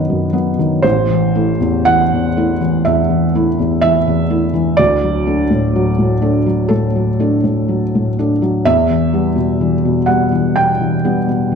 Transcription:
Already playing: F#2 D#3 F#3 B3 B4 D#5 F#5 B5
0.10 F#2
0.33 F#3 B3
0.59 D#3
0.82 A1 C5
1.10 E3
1.35 A3 E4
1.60 E2
1.85 E3 F#5
2.14 E2
2.37 A3 E4
2.61 E3
2.85 E2 E5
3.10 E3
3.35 A3 E4
3.59 E2
3.81 E3 E5
4.07 E2
4.30 A3 E4
4.54 E3
4.77 D2 D5
5.04 F#3
5.26 A3 D4
5.51 A2
5.76 F#3
5.99 A2
6.22 A3 D4
6.46 F#3
6.68 A2 A4
6.96 F#3
7.20 A3 D4
7.44 A2
7.68 F#3
7.95 A2
8.19 A3 D4
8.42 F#3
8.65 E2 E5
8.90 E3
9.13 G3 B3
9.36 B2
9.61 E3
9.85 B2
10.06 G3 B3 F#5
10.32 E3
10.56 B2 G5
10.80 E3
11.04 G3 B3
11.29 B2
11.52 E3

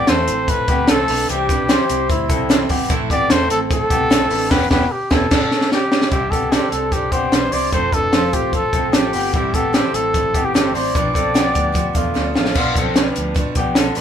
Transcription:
Already playing: D5
0.07 E2 A2 E3 A3 C4 E4 A4 C5, snare, closed hi-hat
0.27 A1 A3 C4 E4, closed hi-hat
0.48 E3 A3 C4 E4 B4, kick, closed hi-hat
0.68 D2 B3 C4 E4 G4, kick, closed hi-hat
0.72 A3
0.88 C2 A2 E3 A3 C4 E4 A4, snare, closed hi-hat
1.08 B1 A3 C4 D4 E4 B4, open hi-hat
1.29 C2 C3 E3 G3 C4 E4 G4, closed hi-hat
1.49 G3 C4 D4 E4 B4, kick, closed hi-hat
1.68 C3 E3 G3 C4 E4 C5, snare, closed hi-hat
1.89 C2 G3 C4 E4, closed hi-hat
2.09 D2 E3 G3 C4 E4, kick, closed hi-hat
2.28 C2 G3 C4 E4 A4, kick, closed hi-hat
2.49 C3 E3 G3 C4 E4, snare, closed hi-hat
2.69 G1 G3 B3 C4 E4 G4, kick, open hi-hat
2.89 A1 A2 E3 A3 C4 E4, kick, closed hi-hat
3.10 A1 A3 B3 C4 E4 G4 D5, kick, closed hi-hat
3.30 E2 A2 E3 A3 C4 E4 A4 C5, snare, closed hi-hat
3.50 A1 A3 C4 E4 A4, closed hi-hat
3.70 E3 A3 C4 E4 A4, kick, closed hi-hat
3.90 C2 A3 B3 C4 E4 G4, kick, closed hi-hat
4.10 B1 A2 E3 A3 C4 E4 A4, snare, closed hi-hat
4.30 A1 A3 C4 D4 E4 B4, open hi-hat
4.50 E1 E3 B3 E4 G4 B4, kick, snare, crash
4.71 E1 B3 E4 G4 B4, kick, snare
4.92 G4
5.10 E1 B3 E4 G4 A4 B4, kick, snare
5.31 G1 G3 B3 D4 A4, kick, snare, crash
5.51 snare
5.61 snare
5.72 G4, snare
5.92 snare
6.02 snare
6.11 C2 C3 E3 G3 C4 D4 E4 G4, kick, closed hi-hat
6.31 C2 B3 C4 D4 G4 A4, kick, closed hi-hat
6.52 C3 E3 C4 D4 G4 A4, snare, closed hi-hat
6.71 C2 C4 D4 G4 A4, closed hi-hat
6.92 E3 C4 D4 G4, kick, closed hi-hat
7.12 B3 C4 D4 G4 C5, kick, closed hi-hat
7.32 B1 C3 E3 C4 D4 G4 B4, snare, closed hi-hat
7.52 C2 C4 D4 E4 G4 C5 D5, open hi-hat
7.72 F1 F3 A3 C4 F4 A4 C5, kick, closed hi-hat
7.92 A3 C4 D4 F4 A4 B4, kick, closed hi-hat
8.13 F3 A3 C4 F4 C5, snare, closed hi-hat
8.32 A1 A3 C4 F4 G4, kick, closed hi-hat
8.53 F3 A3 C4 F4 A4, kick, closed hi-hat
8.73 B1 A3 C4 F4 A4, kick, closed hi-hat
8.92 A1 F3 A3 C4 F4 G4, snare, closed hi-hat
9.12 G1 A3 B3 C4 F4 G4, open hi-hat
9.33 A1 A2 E3 G3 C4 E4 G4, kick, closed hi-hat
9.53 A1 G3 B3 C4 E4 G4 A4, kick, closed hi-hat
9.73 A2 E3 G3 C4 E4 G4 A4, snare, closed hi-hat
9.93 A1 G3 C4 E4 A4, closed hi-hat
10.13 E3 G3 C4 E4, kick, closed hi-hat
10.34 G3 B3 C4 E4 G4, kick, closed hi-hat
10.45 G4
10.54 G1 A2 E3 G3 C4 E4 A4, snare, closed hi-hat
10.74 A1 G3 C4 E4 C5 D5, open hi-hat
10.95 B1 B2 F3 B3 D4 B4, kick, closed hi-hat
11.14 F3 B3 C4 D4 A4, kick, closed hi-hat
11.34 B2 F3 B3 D4 G4, snare, closed hi-hat
11.54 D2 F3 B3 D4, kick, closed hi-hat
11.72 B2 F3 B3 D4, kick, closed hi-hat
11.93 E2 F3 A3 B3 D4 F4, kick, closed hi-hat
12.14 D2 B2 F3 B3 D4, snare
12.34 A1 F3 A3 B3 D4 F4, snare
12.45 snare
12.54 B1 B2 F3 B3 D4 F4, kick, crash
12.74 B1 F3 B3 D4 A4, kick, closed hi-hat
12.79 C4
12.94 B2 F3 B3 D4 B4, snare, closed hi-hat
12.99 D4
13.15 D2 F3 B3 D4, closed hi-hat
13.34 B2 F3 B3 D4, kick, closed hi-hat
13.55 B1 F3 B3 D4 G4, kick, closed hi-hat
13.75 B2 F3 B3 D4 A4, snare, closed hi-hat
13.95 A1 B3 D4 B4, open hi-hat

